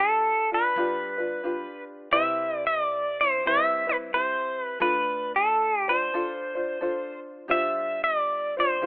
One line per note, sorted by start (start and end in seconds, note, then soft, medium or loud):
0.00 0.30 G1 medium
0.00 0.51 D4 medium
0.00 0.50 F4 medium
0.00 0.54 G4 medium
0.00 0.49 A4 medium
0.51 0.76 D4 soft
0.51 0.77 F4 soft
0.51 1.83 B4 medium
0.76 1.64 G1 medium
0.76 1.19 D4 medium
0.76 1.18 F4 medium
0.76 1.19 G4 medium
0.76 1.17 B4 medium
1.18 1.43 D4 soft
1.18 1.43 F4 soft
1.18 1.44 B4 soft
1.43 2.11 D4 medium
1.43 2.12 F4 medium
1.43 2.11 G4 medium
1.43 2.12 B4 medium
2.11 3.46 C2 medium
2.11 3.22 C4 medium
2.11 3.20 E4 medium
2.11 3.20 G4 medium
2.11 3.21 B4 medium
2.11 2.66 E5 medium
2.67 2.84 D#5 medium
2.84 3.22 D5 medium
3.21 3.45 C4 soft
3.21 3.45 E4 soft
3.21 3.47 C5 medium
3.45 4.33 G2 medium
3.45 3.87 C4 medium
3.45 3.87 E4 medium
3.45 3.87 G4 medium
3.45 3.86 B4 medium
3.45 3.89 E5 medium
3.87 4.12 C4 soft
3.87 4.13 E4 soft
3.87 4.13 B4 soft
3.87 3.96 B4 medium
4.13 4.80 C4 medium
4.13 4.81 E4 medium
4.13 4.80 G4 medium
4.13 4.62 C5 medium
4.62 4.81 B4 medium
4.80 6.14 D2 medium
4.80 5.89 D4 medium
4.80 5.88 F4 medium
4.80 5.87 A4 medium
4.80 5.32 B4 medium
5.36 5.80 A4 medium
5.80 5.91 G4 medium
5.88 6.13 D4 soft
5.88 6.13 F4 medium
5.88 6.14 C5 soft
5.88 7.20 C5 medium
6.14 7.02 A1 medium
6.14 6.56 D4 medium
6.14 6.55 F4 medium
6.14 6.56 A4 medium
6.14 6.54 C5 medium
6.55 6.80 D4 soft
6.55 6.81 F4 soft
6.55 6.81 C5 medium
6.81 7.48 D4 medium
6.81 7.49 F4 medium
6.81 7.48 A4 medium
6.81 7.49 C5 medium
7.48 8.83 G1 medium
7.48 8.57 D4 medium
7.48 8.57 F4 medium
7.48 8.61 G4 medium
7.48 8.56 C5 medium
7.48 8.03 E5 loud
8.04 8.54 D5 medium
8.57 8.81 D4 soft
8.57 8.81 F4 soft
8.57 8.82 C5 medium
8.57 8.85 C5 medium
8.81 8.86 D2 medium
8.81 8.86 D4 medium
8.81 8.86 F4 medium
8.81 8.86 G4 medium